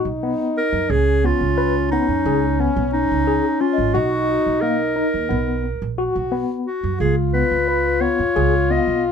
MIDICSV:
0, 0, Header, 1, 6, 480
1, 0, Start_track
1, 0, Tempo, 677966
1, 641, Time_signature, 9, 3, 24, 8
1, 6456, End_track
2, 0, Start_track
2, 0, Title_t, "Celesta"
2, 0, Program_c, 0, 8
2, 2642, Note_on_c, 0, 75, 54
2, 3011, Note_off_c, 0, 75, 0
2, 6212, Note_on_c, 0, 77, 43
2, 6456, Note_off_c, 0, 77, 0
2, 6456, End_track
3, 0, Start_track
3, 0, Title_t, "Clarinet"
3, 0, Program_c, 1, 71
3, 407, Note_on_c, 1, 70, 92
3, 641, Note_on_c, 1, 68, 92
3, 652, Note_off_c, 1, 70, 0
3, 887, Note_on_c, 1, 65, 82
3, 898, Note_off_c, 1, 68, 0
3, 1351, Note_off_c, 1, 65, 0
3, 1355, Note_on_c, 1, 63, 79
3, 1843, Note_on_c, 1, 61, 71
3, 1853, Note_off_c, 1, 63, 0
3, 2068, Note_off_c, 1, 61, 0
3, 2072, Note_on_c, 1, 63, 86
3, 2554, Note_on_c, 1, 65, 80
3, 2565, Note_off_c, 1, 63, 0
3, 2786, Note_on_c, 1, 66, 90
3, 2797, Note_off_c, 1, 65, 0
3, 3265, Note_on_c, 1, 70, 74
3, 3276, Note_off_c, 1, 66, 0
3, 4234, Note_off_c, 1, 70, 0
3, 4717, Note_on_c, 1, 66, 73
3, 4943, Note_off_c, 1, 66, 0
3, 4960, Note_on_c, 1, 68, 70
3, 5069, Note_off_c, 1, 68, 0
3, 5194, Note_on_c, 1, 71, 74
3, 5672, Note_on_c, 1, 73, 84
3, 5682, Note_off_c, 1, 71, 0
3, 6169, Note_on_c, 1, 75, 72
3, 6180, Note_off_c, 1, 73, 0
3, 6407, Note_off_c, 1, 75, 0
3, 6456, End_track
4, 0, Start_track
4, 0, Title_t, "French horn"
4, 0, Program_c, 2, 60
4, 0, Note_on_c, 2, 63, 87
4, 635, Note_on_c, 2, 61, 84
4, 645, Note_off_c, 2, 63, 0
4, 2800, Note_on_c, 2, 63, 92
4, 2811, Note_off_c, 2, 61, 0
4, 4049, Note_off_c, 2, 63, 0
4, 4242, Note_on_c, 2, 66, 88
4, 4694, Note_off_c, 2, 66, 0
4, 4912, Note_on_c, 2, 66, 73
4, 4957, Note_on_c, 2, 65, 98
4, 4968, Note_off_c, 2, 66, 0
4, 6456, Note_off_c, 2, 65, 0
4, 6456, End_track
5, 0, Start_track
5, 0, Title_t, "Tine electric piano"
5, 0, Program_c, 3, 4
5, 164, Note_on_c, 3, 59, 73
5, 411, Note_off_c, 3, 59, 0
5, 879, Note_on_c, 3, 59, 59
5, 1003, Note_off_c, 3, 59, 0
5, 1116, Note_on_c, 3, 71, 66
5, 1241, Note_off_c, 3, 71, 0
5, 1365, Note_on_c, 3, 59, 71
5, 1488, Note_off_c, 3, 59, 0
5, 1602, Note_on_c, 3, 68, 71
5, 1725, Note_off_c, 3, 68, 0
5, 1842, Note_on_c, 3, 59, 66
5, 2089, Note_off_c, 3, 59, 0
5, 2317, Note_on_c, 3, 68, 72
5, 2442, Note_off_c, 3, 68, 0
5, 2555, Note_on_c, 3, 61, 60
5, 2681, Note_off_c, 3, 61, 0
5, 2792, Note_on_c, 3, 66, 74
5, 3042, Note_off_c, 3, 66, 0
5, 3275, Note_on_c, 3, 58, 69
5, 3400, Note_off_c, 3, 58, 0
5, 3512, Note_on_c, 3, 63, 67
5, 3638, Note_off_c, 3, 63, 0
5, 3745, Note_on_c, 3, 59, 68
5, 3998, Note_off_c, 3, 59, 0
5, 4236, Note_on_c, 3, 66, 67
5, 4361, Note_off_c, 3, 66, 0
5, 4473, Note_on_c, 3, 59, 71
5, 4723, Note_off_c, 3, 59, 0
5, 5198, Note_on_c, 3, 59, 61
5, 5324, Note_off_c, 3, 59, 0
5, 5437, Note_on_c, 3, 71, 64
5, 5563, Note_off_c, 3, 71, 0
5, 5671, Note_on_c, 3, 59, 63
5, 5799, Note_off_c, 3, 59, 0
5, 5919, Note_on_c, 3, 68, 71
5, 6044, Note_off_c, 3, 68, 0
5, 6163, Note_on_c, 3, 59, 56
5, 6412, Note_off_c, 3, 59, 0
5, 6456, End_track
6, 0, Start_track
6, 0, Title_t, "Upright bass"
6, 0, Program_c, 4, 32
6, 35, Note_on_c, 4, 35, 68
6, 230, Note_off_c, 4, 35, 0
6, 514, Note_on_c, 4, 42, 75
6, 613, Note_off_c, 4, 42, 0
6, 635, Note_on_c, 4, 37, 92
6, 926, Note_off_c, 4, 37, 0
6, 995, Note_on_c, 4, 37, 73
6, 1383, Note_off_c, 4, 37, 0
6, 1476, Note_on_c, 4, 41, 64
6, 1574, Note_off_c, 4, 41, 0
6, 1596, Note_on_c, 4, 37, 88
6, 1887, Note_off_c, 4, 37, 0
6, 1957, Note_on_c, 4, 35, 79
6, 2151, Note_off_c, 4, 35, 0
6, 2203, Note_on_c, 4, 37, 69
6, 2394, Note_off_c, 4, 37, 0
6, 2677, Note_on_c, 4, 32, 79
6, 2775, Note_off_c, 4, 32, 0
6, 2794, Note_on_c, 4, 35, 86
6, 3086, Note_off_c, 4, 35, 0
6, 3161, Note_on_c, 4, 35, 60
6, 3547, Note_off_c, 4, 35, 0
6, 3640, Note_on_c, 4, 39, 65
6, 3737, Note_off_c, 4, 39, 0
6, 3755, Note_on_c, 4, 35, 88
6, 4047, Note_off_c, 4, 35, 0
6, 4119, Note_on_c, 4, 34, 73
6, 4313, Note_off_c, 4, 34, 0
6, 4358, Note_on_c, 4, 35, 71
6, 4552, Note_off_c, 4, 35, 0
6, 4840, Note_on_c, 4, 42, 76
6, 4937, Note_off_c, 4, 42, 0
6, 4957, Note_on_c, 4, 37, 88
6, 5248, Note_off_c, 4, 37, 0
6, 5318, Note_on_c, 4, 37, 68
6, 5706, Note_off_c, 4, 37, 0
6, 5800, Note_on_c, 4, 41, 68
6, 5898, Note_off_c, 4, 41, 0
6, 5920, Note_on_c, 4, 37, 89
6, 6211, Note_off_c, 4, 37, 0
6, 6283, Note_on_c, 4, 35, 70
6, 6456, Note_off_c, 4, 35, 0
6, 6456, End_track
0, 0, End_of_file